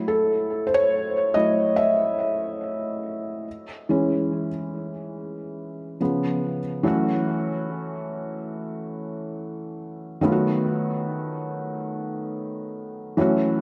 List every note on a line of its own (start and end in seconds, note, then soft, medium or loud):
0.00 1.34 F#3 medium
0.00 1.34 A3 medium
0.00 1.35 E4 medium
0.08 0.63 A4 medium
0.67 0.75 C5 medium
0.74 1.37 C#5 loud
1.34 1.74 F#3 soft
1.34 1.74 A3 soft
1.34 1.74 E4 medium
1.34 1.78 D#5 loud
1.76 5.95 E5 medium
3.89 4.48 E3 medium
3.89 4.48 G#3 medium
3.89 4.48 C#4 medium
6.00 6.59 C#3 medium
6.00 6.59 F3 soft
6.00 6.60 B3 medium
6.83 10.18 E3 medium
6.83 10.18 F#3 medium
6.83 10.19 A3 medium
6.83 10.20 C#4 medium
6.88 10.20 F#4 medium
10.21 13.14 D#3 medium
10.21 13.14 F#3 medium
10.21 13.15 A3 medium
10.21 13.15 B3 medium
10.26 10.32 F4 medium
10.32 13.19 F#4 medium
13.17 13.61 E3 medium
13.17 13.61 F#3 medium
13.17 13.61 A3 medium
13.17 13.61 C#4 medium
13.21 13.61 F#4 medium